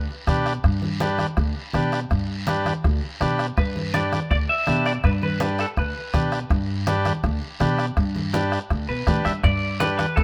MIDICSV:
0, 0, Header, 1, 6, 480
1, 0, Start_track
1, 0, Key_signature, 1, "major"
1, 0, Tempo, 366524
1, 842, Time_signature, 4, 2, 24, 8
1, 13406, End_track
2, 0, Start_track
2, 0, Title_t, "Clean electric guitar"
2, 0, Program_c, 0, 27
2, 0, Note_on_c, 0, 71, 86
2, 310, Note_off_c, 0, 71, 0
2, 4682, Note_on_c, 0, 71, 85
2, 5159, Note_on_c, 0, 74, 93
2, 5176, Note_off_c, 0, 71, 0
2, 5606, Note_off_c, 0, 74, 0
2, 5639, Note_on_c, 0, 74, 96
2, 5705, Note_off_c, 0, 74, 0
2, 5884, Note_on_c, 0, 76, 95
2, 6329, Note_off_c, 0, 76, 0
2, 6366, Note_on_c, 0, 74, 91
2, 6432, Note_off_c, 0, 74, 0
2, 6608, Note_on_c, 0, 71, 89
2, 6673, Note_off_c, 0, 71, 0
2, 6852, Note_on_c, 0, 71, 83
2, 7292, Note_off_c, 0, 71, 0
2, 7338, Note_on_c, 0, 69, 70
2, 7403, Note_off_c, 0, 69, 0
2, 7577, Note_on_c, 0, 71, 74
2, 8238, Note_off_c, 0, 71, 0
2, 11639, Note_on_c, 0, 71, 91
2, 12086, Note_off_c, 0, 71, 0
2, 12112, Note_on_c, 0, 76, 90
2, 12178, Note_off_c, 0, 76, 0
2, 12363, Note_on_c, 0, 74, 93
2, 12828, Note_off_c, 0, 74, 0
2, 12833, Note_on_c, 0, 71, 95
2, 13051, Note_off_c, 0, 71, 0
2, 13067, Note_on_c, 0, 71, 79
2, 13305, Note_on_c, 0, 69, 83
2, 13322, Note_off_c, 0, 71, 0
2, 13406, Note_off_c, 0, 69, 0
2, 13406, End_track
3, 0, Start_track
3, 0, Title_t, "Transistor combo organ"
3, 0, Program_c, 1, 18
3, 360, Note_on_c, 1, 62, 80
3, 364, Note_on_c, 1, 67, 71
3, 367, Note_on_c, 1, 71, 91
3, 697, Note_off_c, 1, 62, 0
3, 699, Note_off_c, 1, 67, 0
3, 701, Note_off_c, 1, 71, 0
3, 1318, Note_on_c, 1, 62, 81
3, 1323, Note_on_c, 1, 67, 75
3, 1328, Note_on_c, 1, 71, 92
3, 1656, Note_off_c, 1, 62, 0
3, 1658, Note_off_c, 1, 67, 0
3, 1661, Note_off_c, 1, 71, 0
3, 2279, Note_on_c, 1, 62, 81
3, 2284, Note_on_c, 1, 67, 74
3, 2290, Note_on_c, 1, 71, 85
3, 2616, Note_off_c, 1, 62, 0
3, 2619, Note_off_c, 1, 67, 0
3, 2622, Note_off_c, 1, 71, 0
3, 3244, Note_on_c, 1, 62, 79
3, 3250, Note_on_c, 1, 67, 70
3, 3251, Note_on_c, 1, 71, 91
3, 3579, Note_off_c, 1, 62, 0
3, 3582, Note_off_c, 1, 67, 0
3, 3582, Note_off_c, 1, 71, 0
3, 4197, Note_on_c, 1, 62, 73
3, 4204, Note_on_c, 1, 67, 75
3, 4211, Note_on_c, 1, 71, 90
3, 4535, Note_off_c, 1, 62, 0
3, 4538, Note_off_c, 1, 67, 0
3, 4542, Note_off_c, 1, 71, 0
3, 5160, Note_on_c, 1, 62, 69
3, 5163, Note_on_c, 1, 67, 59
3, 5170, Note_on_c, 1, 71, 70
3, 5496, Note_off_c, 1, 62, 0
3, 5498, Note_off_c, 1, 67, 0
3, 5501, Note_off_c, 1, 71, 0
3, 6113, Note_on_c, 1, 62, 64
3, 6122, Note_on_c, 1, 67, 64
3, 6124, Note_on_c, 1, 71, 76
3, 6453, Note_off_c, 1, 62, 0
3, 6457, Note_off_c, 1, 67, 0
3, 6458, Note_off_c, 1, 71, 0
3, 7075, Note_on_c, 1, 62, 68
3, 7084, Note_on_c, 1, 67, 65
3, 7089, Note_on_c, 1, 71, 74
3, 7413, Note_off_c, 1, 62, 0
3, 7418, Note_off_c, 1, 67, 0
3, 7420, Note_off_c, 1, 71, 0
3, 8034, Note_on_c, 1, 62, 63
3, 8036, Note_on_c, 1, 67, 61
3, 8041, Note_on_c, 1, 71, 73
3, 8373, Note_off_c, 1, 62, 0
3, 8374, Note_off_c, 1, 67, 0
3, 8376, Note_off_c, 1, 71, 0
3, 8997, Note_on_c, 1, 62, 78
3, 9000, Note_on_c, 1, 67, 73
3, 9008, Note_on_c, 1, 71, 96
3, 9334, Note_off_c, 1, 62, 0
3, 9335, Note_off_c, 1, 67, 0
3, 9339, Note_off_c, 1, 71, 0
3, 9950, Note_on_c, 1, 62, 82
3, 9957, Note_on_c, 1, 67, 78
3, 9961, Note_on_c, 1, 71, 86
3, 10290, Note_off_c, 1, 62, 0
3, 10294, Note_off_c, 1, 67, 0
3, 10296, Note_off_c, 1, 71, 0
3, 10913, Note_on_c, 1, 62, 79
3, 10918, Note_on_c, 1, 67, 73
3, 10923, Note_on_c, 1, 71, 86
3, 11252, Note_off_c, 1, 62, 0
3, 11255, Note_off_c, 1, 67, 0
3, 11257, Note_off_c, 1, 71, 0
3, 11872, Note_on_c, 1, 62, 68
3, 11879, Note_on_c, 1, 67, 61
3, 11881, Note_on_c, 1, 71, 73
3, 12212, Note_off_c, 1, 62, 0
3, 12216, Note_off_c, 1, 67, 0
3, 12217, Note_off_c, 1, 71, 0
3, 12840, Note_on_c, 1, 62, 64
3, 12843, Note_on_c, 1, 67, 63
3, 12847, Note_on_c, 1, 71, 79
3, 13177, Note_off_c, 1, 62, 0
3, 13178, Note_off_c, 1, 67, 0
3, 13180, Note_off_c, 1, 71, 0
3, 13406, End_track
4, 0, Start_track
4, 0, Title_t, "Upright bass"
4, 0, Program_c, 2, 32
4, 359, Note_on_c, 2, 47, 78
4, 744, Note_off_c, 2, 47, 0
4, 839, Note_on_c, 2, 43, 86
4, 1608, Note_off_c, 2, 43, 0
4, 1797, Note_on_c, 2, 38, 88
4, 1991, Note_off_c, 2, 38, 0
4, 2288, Note_on_c, 2, 47, 78
4, 2669, Note_off_c, 2, 47, 0
4, 2766, Note_on_c, 2, 43, 88
4, 3532, Note_off_c, 2, 43, 0
4, 3727, Note_on_c, 2, 38, 93
4, 3916, Note_off_c, 2, 38, 0
4, 4207, Note_on_c, 2, 47, 80
4, 4588, Note_off_c, 2, 47, 0
4, 4682, Note_on_c, 2, 43, 92
4, 5449, Note_off_c, 2, 43, 0
4, 5642, Note_on_c, 2, 38, 86
4, 5833, Note_off_c, 2, 38, 0
4, 6125, Note_on_c, 2, 47, 79
4, 6507, Note_off_c, 2, 47, 0
4, 6600, Note_on_c, 2, 43, 88
4, 7367, Note_off_c, 2, 43, 0
4, 7560, Note_on_c, 2, 38, 82
4, 7751, Note_off_c, 2, 38, 0
4, 8038, Note_on_c, 2, 47, 75
4, 8422, Note_off_c, 2, 47, 0
4, 8518, Note_on_c, 2, 43, 97
4, 9286, Note_off_c, 2, 43, 0
4, 9477, Note_on_c, 2, 38, 92
4, 9670, Note_off_c, 2, 38, 0
4, 9959, Note_on_c, 2, 47, 82
4, 10343, Note_off_c, 2, 47, 0
4, 10438, Note_on_c, 2, 43, 93
4, 11207, Note_off_c, 2, 43, 0
4, 11402, Note_on_c, 2, 38, 84
4, 11593, Note_off_c, 2, 38, 0
4, 11645, Note_on_c, 2, 47, 72
4, 11858, Note_off_c, 2, 47, 0
4, 11879, Note_on_c, 2, 45, 78
4, 12095, Note_off_c, 2, 45, 0
4, 12124, Note_on_c, 2, 43, 81
4, 12338, Note_off_c, 2, 43, 0
4, 12360, Note_on_c, 2, 43, 90
4, 13129, Note_off_c, 2, 43, 0
4, 13322, Note_on_c, 2, 38, 91
4, 13406, Note_off_c, 2, 38, 0
4, 13406, End_track
5, 0, Start_track
5, 0, Title_t, "Two-headed folk drums"
5, 358, Note_on_c, 9, 36, 70
5, 358, Note_on_c, 9, 37, 77
5, 489, Note_off_c, 9, 36, 0
5, 489, Note_off_c, 9, 37, 0
5, 602, Note_on_c, 9, 37, 76
5, 733, Note_off_c, 9, 37, 0
5, 838, Note_on_c, 9, 36, 83
5, 839, Note_on_c, 9, 37, 86
5, 969, Note_off_c, 9, 36, 0
5, 970, Note_off_c, 9, 37, 0
5, 1321, Note_on_c, 9, 37, 79
5, 1452, Note_off_c, 9, 37, 0
5, 1555, Note_on_c, 9, 37, 79
5, 1686, Note_off_c, 9, 37, 0
5, 1792, Note_on_c, 9, 37, 81
5, 1798, Note_on_c, 9, 36, 82
5, 1923, Note_off_c, 9, 37, 0
5, 1929, Note_off_c, 9, 36, 0
5, 2280, Note_on_c, 9, 37, 82
5, 2411, Note_off_c, 9, 37, 0
5, 2523, Note_on_c, 9, 37, 79
5, 2654, Note_off_c, 9, 37, 0
5, 2760, Note_on_c, 9, 37, 77
5, 2762, Note_on_c, 9, 36, 80
5, 2891, Note_off_c, 9, 37, 0
5, 2893, Note_off_c, 9, 36, 0
5, 3243, Note_on_c, 9, 37, 78
5, 3374, Note_off_c, 9, 37, 0
5, 3485, Note_on_c, 9, 37, 84
5, 3616, Note_off_c, 9, 37, 0
5, 3724, Note_on_c, 9, 36, 82
5, 3724, Note_on_c, 9, 37, 74
5, 3855, Note_off_c, 9, 36, 0
5, 3855, Note_off_c, 9, 37, 0
5, 4202, Note_on_c, 9, 37, 84
5, 4333, Note_off_c, 9, 37, 0
5, 4442, Note_on_c, 9, 37, 79
5, 4573, Note_off_c, 9, 37, 0
5, 4682, Note_on_c, 9, 37, 88
5, 4683, Note_on_c, 9, 36, 76
5, 4813, Note_off_c, 9, 37, 0
5, 4814, Note_off_c, 9, 36, 0
5, 5165, Note_on_c, 9, 37, 76
5, 5296, Note_off_c, 9, 37, 0
5, 5403, Note_on_c, 9, 37, 78
5, 5534, Note_off_c, 9, 37, 0
5, 5643, Note_on_c, 9, 36, 84
5, 5648, Note_on_c, 9, 37, 75
5, 5774, Note_off_c, 9, 36, 0
5, 5779, Note_off_c, 9, 37, 0
5, 6118, Note_on_c, 9, 37, 80
5, 6249, Note_off_c, 9, 37, 0
5, 6363, Note_on_c, 9, 37, 76
5, 6494, Note_off_c, 9, 37, 0
5, 6597, Note_on_c, 9, 37, 86
5, 6599, Note_on_c, 9, 36, 76
5, 6728, Note_off_c, 9, 37, 0
5, 6730, Note_off_c, 9, 36, 0
5, 7080, Note_on_c, 9, 37, 79
5, 7211, Note_off_c, 9, 37, 0
5, 7321, Note_on_c, 9, 37, 77
5, 7452, Note_off_c, 9, 37, 0
5, 7559, Note_on_c, 9, 36, 81
5, 7561, Note_on_c, 9, 37, 78
5, 7690, Note_off_c, 9, 36, 0
5, 7692, Note_off_c, 9, 37, 0
5, 8036, Note_on_c, 9, 37, 76
5, 8037, Note_on_c, 9, 36, 68
5, 8167, Note_off_c, 9, 37, 0
5, 8168, Note_off_c, 9, 36, 0
5, 8279, Note_on_c, 9, 37, 74
5, 8410, Note_off_c, 9, 37, 0
5, 8517, Note_on_c, 9, 36, 84
5, 8520, Note_on_c, 9, 37, 77
5, 8648, Note_off_c, 9, 36, 0
5, 8651, Note_off_c, 9, 37, 0
5, 8996, Note_on_c, 9, 37, 84
5, 9127, Note_off_c, 9, 37, 0
5, 9240, Note_on_c, 9, 37, 79
5, 9371, Note_off_c, 9, 37, 0
5, 9476, Note_on_c, 9, 36, 74
5, 9478, Note_on_c, 9, 37, 79
5, 9607, Note_off_c, 9, 36, 0
5, 9609, Note_off_c, 9, 37, 0
5, 9960, Note_on_c, 9, 37, 84
5, 10091, Note_off_c, 9, 37, 0
5, 10195, Note_on_c, 9, 37, 75
5, 10326, Note_off_c, 9, 37, 0
5, 10435, Note_on_c, 9, 37, 81
5, 10436, Note_on_c, 9, 36, 80
5, 10566, Note_off_c, 9, 37, 0
5, 10567, Note_off_c, 9, 36, 0
5, 10918, Note_on_c, 9, 37, 77
5, 11049, Note_off_c, 9, 37, 0
5, 11158, Note_on_c, 9, 37, 77
5, 11289, Note_off_c, 9, 37, 0
5, 11399, Note_on_c, 9, 36, 76
5, 11399, Note_on_c, 9, 37, 76
5, 11530, Note_off_c, 9, 36, 0
5, 11530, Note_off_c, 9, 37, 0
5, 11875, Note_on_c, 9, 37, 80
5, 11878, Note_on_c, 9, 36, 68
5, 12006, Note_off_c, 9, 37, 0
5, 12009, Note_off_c, 9, 36, 0
5, 12112, Note_on_c, 9, 37, 85
5, 12243, Note_off_c, 9, 37, 0
5, 12356, Note_on_c, 9, 37, 86
5, 12358, Note_on_c, 9, 36, 84
5, 12487, Note_off_c, 9, 37, 0
5, 12489, Note_off_c, 9, 36, 0
5, 12837, Note_on_c, 9, 37, 80
5, 12968, Note_off_c, 9, 37, 0
5, 13080, Note_on_c, 9, 37, 79
5, 13211, Note_off_c, 9, 37, 0
5, 13317, Note_on_c, 9, 37, 80
5, 13320, Note_on_c, 9, 36, 80
5, 13406, Note_off_c, 9, 36, 0
5, 13406, Note_off_c, 9, 37, 0
5, 13406, End_track
6, 0, Start_track
6, 0, Title_t, "Drums"
6, 117, Note_on_c, 9, 63, 30
6, 248, Note_off_c, 9, 63, 0
6, 353, Note_on_c, 9, 63, 70
6, 360, Note_on_c, 9, 73, 69
6, 484, Note_off_c, 9, 63, 0
6, 491, Note_off_c, 9, 73, 0
6, 602, Note_on_c, 9, 73, 67
6, 733, Note_off_c, 9, 73, 0
6, 834, Note_on_c, 9, 63, 32
6, 836, Note_on_c, 9, 74, 65
6, 965, Note_off_c, 9, 63, 0
6, 967, Note_off_c, 9, 74, 0
6, 1072, Note_on_c, 9, 63, 68
6, 1203, Note_off_c, 9, 63, 0
6, 1313, Note_on_c, 9, 63, 91
6, 1315, Note_on_c, 9, 73, 65
6, 1444, Note_off_c, 9, 63, 0
6, 1446, Note_off_c, 9, 73, 0
6, 1549, Note_on_c, 9, 63, 64
6, 1564, Note_on_c, 9, 73, 67
6, 1680, Note_off_c, 9, 63, 0
6, 1695, Note_off_c, 9, 73, 0
6, 1803, Note_on_c, 9, 74, 60
6, 1934, Note_off_c, 9, 74, 0
6, 2034, Note_on_c, 9, 63, 32
6, 2165, Note_off_c, 9, 63, 0
6, 2272, Note_on_c, 9, 63, 81
6, 2285, Note_on_c, 9, 73, 65
6, 2403, Note_off_c, 9, 63, 0
6, 2416, Note_off_c, 9, 73, 0
6, 2518, Note_on_c, 9, 73, 69
6, 2649, Note_off_c, 9, 73, 0
6, 2754, Note_on_c, 9, 63, 30
6, 2763, Note_on_c, 9, 74, 68
6, 2885, Note_off_c, 9, 63, 0
6, 2894, Note_off_c, 9, 74, 0
6, 3232, Note_on_c, 9, 63, 101
6, 3244, Note_on_c, 9, 73, 67
6, 3363, Note_off_c, 9, 63, 0
6, 3375, Note_off_c, 9, 73, 0
6, 3477, Note_on_c, 9, 63, 66
6, 3486, Note_on_c, 9, 73, 64
6, 3608, Note_off_c, 9, 63, 0
6, 3617, Note_off_c, 9, 73, 0
6, 3728, Note_on_c, 9, 74, 65
6, 3859, Note_off_c, 9, 74, 0
6, 3964, Note_on_c, 9, 63, 32
6, 4095, Note_off_c, 9, 63, 0
6, 4198, Note_on_c, 9, 63, 75
6, 4206, Note_on_c, 9, 73, 66
6, 4329, Note_off_c, 9, 63, 0
6, 4337, Note_off_c, 9, 73, 0
6, 4443, Note_on_c, 9, 73, 63
6, 4574, Note_off_c, 9, 73, 0
6, 4677, Note_on_c, 9, 74, 70
6, 4682, Note_on_c, 9, 63, 31
6, 4808, Note_off_c, 9, 74, 0
6, 4813, Note_off_c, 9, 63, 0
6, 4920, Note_on_c, 9, 63, 68
6, 5051, Note_off_c, 9, 63, 0
6, 5158, Note_on_c, 9, 63, 96
6, 5164, Note_on_c, 9, 73, 61
6, 5289, Note_off_c, 9, 63, 0
6, 5295, Note_off_c, 9, 73, 0
6, 5400, Note_on_c, 9, 63, 72
6, 5403, Note_on_c, 9, 73, 64
6, 5531, Note_off_c, 9, 63, 0
6, 5534, Note_off_c, 9, 73, 0
6, 5646, Note_on_c, 9, 74, 58
6, 5777, Note_off_c, 9, 74, 0
6, 5876, Note_on_c, 9, 63, 34
6, 6007, Note_off_c, 9, 63, 0
6, 6114, Note_on_c, 9, 63, 76
6, 6123, Note_on_c, 9, 73, 62
6, 6245, Note_off_c, 9, 63, 0
6, 6254, Note_off_c, 9, 73, 0
6, 6361, Note_on_c, 9, 73, 65
6, 6492, Note_off_c, 9, 73, 0
6, 6596, Note_on_c, 9, 63, 32
6, 6602, Note_on_c, 9, 74, 63
6, 6727, Note_off_c, 9, 63, 0
6, 6733, Note_off_c, 9, 74, 0
6, 6840, Note_on_c, 9, 63, 69
6, 6971, Note_off_c, 9, 63, 0
6, 7074, Note_on_c, 9, 63, 94
6, 7077, Note_on_c, 9, 73, 70
6, 7205, Note_off_c, 9, 63, 0
6, 7208, Note_off_c, 9, 73, 0
6, 7314, Note_on_c, 9, 73, 66
6, 7445, Note_off_c, 9, 73, 0
6, 7552, Note_on_c, 9, 74, 64
6, 7683, Note_off_c, 9, 74, 0
6, 7800, Note_on_c, 9, 63, 34
6, 7931, Note_off_c, 9, 63, 0
6, 8030, Note_on_c, 9, 73, 67
6, 8043, Note_on_c, 9, 63, 78
6, 8161, Note_off_c, 9, 73, 0
6, 8174, Note_off_c, 9, 63, 0
6, 8276, Note_on_c, 9, 73, 65
6, 8407, Note_off_c, 9, 73, 0
6, 8509, Note_on_c, 9, 74, 65
6, 8516, Note_on_c, 9, 63, 31
6, 8640, Note_off_c, 9, 74, 0
6, 8647, Note_off_c, 9, 63, 0
6, 8994, Note_on_c, 9, 73, 61
6, 8998, Note_on_c, 9, 63, 93
6, 9125, Note_off_c, 9, 73, 0
6, 9129, Note_off_c, 9, 63, 0
6, 9233, Note_on_c, 9, 73, 69
6, 9240, Note_on_c, 9, 63, 72
6, 9364, Note_off_c, 9, 73, 0
6, 9371, Note_off_c, 9, 63, 0
6, 9475, Note_on_c, 9, 74, 64
6, 9606, Note_off_c, 9, 74, 0
6, 9718, Note_on_c, 9, 63, 34
6, 9849, Note_off_c, 9, 63, 0
6, 9955, Note_on_c, 9, 63, 83
6, 9955, Note_on_c, 9, 73, 67
6, 10086, Note_off_c, 9, 63, 0
6, 10086, Note_off_c, 9, 73, 0
6, 10203, Note_on_c, 9, 73, 64
6, 10334, Note_off_c, 9, 73, 0
6, 10437, Note_on_c, 9, 63, 30
6, 10443, Note_on_c, 9, 74, 66
6, 10568, Note_off_c, 9, 63, 0
6, 10574, Note_off_c, 9, 74, 0
6, 10682, Note_on_c, 9, 63, 68
6, 10813, Note_off_c, 9, 63, 0
6, 10922, Note_on_c, 9, 63, 94
6, 10924, Note_on_c, 9, 73, 68
6, 11053, Note_off_c, 9, 63, 0
6, 11055, Note_off_c, 9, 73, 0
6, 11169, Note_on_c, 9, 73, 66
6, 11300, Note_off_c, 9, 73, 0
6, 11405, Note_on_c, 9, 74, 64
6, 11536, Note_off_c, 9, 74, 0
6, 11640, Note_on_c, 9, 63, 32
6, 11771, Note_off_c, 9, 63, 0
6, 11880, Note_on_c, 9, 73, 67
6, 11883, Note_on_c, 9, 63, 76
6, 12011, Note_off_c, 9, 73, 0
6, 12014, Note_off_c, 9, 63, 0
6, 12120, Note_on_c, 9, 73, 67
6, 12251, Note_off_c, 9, 73, 0
6, 12359, Note_on_c, 9, 63, 29
6, 12361, Note_on_c, 9, 74, 66
6, 12364, Note_on_c, 9, 65, 63
6, 12490, Note_off_c, 9, 63, 0
6, 12492, Note_off_c, 9, 74, 0
6, 12495, Note_off_c, 9, 65, 0
6, 12839, Note_on_c, 9, 63, 97
6, 12842, Note_on_c, 9, 73, 65
6, 12847, Note_on_c, 9, 65, 65
6, 12970, Note_off_c, 9, 63, 0
6, 12973, Note_off_c, 9, 73, 0
6, 12978, Note_off_c, 9, 65, 0
6, 13079, Note_on_c, 9, 73, 65
6, 13082, Note_on_c, 9, 63, 68
6, 13084, Note_on_c, 9, 65, 64
6, 13210, Note_off_c, 9, 73, 0
6, 13213, Note_off_c, 9, 63, 0
6, 13215, Note_off_c, 9, 65, 0
6, 13320, Note_on_c, 9, 74, 63
6, 13324, Note_on_c, 9, 65, 60
6, 13406, Note_off_c, 9, 65, 0
6, 13406, Note_off_c, 9, 74, 0
6, 13406, End_track
0, 0, End_of_file